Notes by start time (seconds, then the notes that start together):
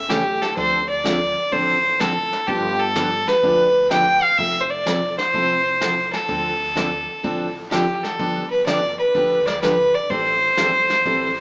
Already playing: E1 E5
0.09 C#3 E3 A3 C#4 G4, snare, hi-hat pedal
0.42 A4, snare
0.56 D2 D3 F3 C4 D4 A4 C5, brush sweep, kick
0.90 D5
1.04 D3 F3 C4 D4 A4, snare, hi-hat pedal
1.52 A1 D3 F3 C4 D4 A4 C5, brush sweep, kick
2.00 D3 F3 C4 D4 A4, snare, hi-hat pedal
2.33 snare
2.47 G1 D3 F3 B3 D4 G4, brush sweep, kick
2.80 A4
2.95 D3 F3 B3 D4 G4, snare, hi-hat pedal
3.28 B4, snare
3.43 D2 D3 F3 B3 D4 G4, brush sweep, kick
3.90 D3 F3 B3 D4 G4 G5, snare, hi-hat pedal
4.23 F5
4.38 F1 F3 C4 E4 A4 E5, brush sweep, kick
4.61 C5
4.70 D5
4.86 F3 C4 E4 A4, snare, hi-hat pedal
5.18 C5, snare
5.34 C2 F3 C4 E4 A4, brush sweep, kick
5.80 F3 C4 E4 A4, snare, hi-hat pedal
6.13 A4, snare
6.28 D2 D3 F3 C4 D4 A4, brush sweep, kick
6.75 D3 F3 C4 D4 A4, snare, hi-hat pedal
7.23 A1 D3 F3 C4 D4 A4, brush sweep, kick
7.71 D3 F3 C4 D4 G4 A4, snare, hi-hat pedal
7.93 G4
8.03 A4, snare
8.19 G1 D3 F3 B3 D4 G4, brush sweep, kick
8.51 B4
8.66 D3 F3 B3 D4 G4 D5, snare, hi-hat pedal
8.99 B4
9.15 D2 D3 F3 B3 D4 G4, brush sweep, kick
9.46 D5, snare
9.62 D3 F3 B3 D4 G4 B4, snare, hi-hat pedal
9.95 D5
10.10 A1 E3 G3 C4 E4 A4 C5, brush sweep, kick
10.57 G1 E3 G3 C4 E4 A4, snare, hi-hat pedal
10.90 snare
11.05 A1 E3 G3 C4 E4 A4, brush sweep, kick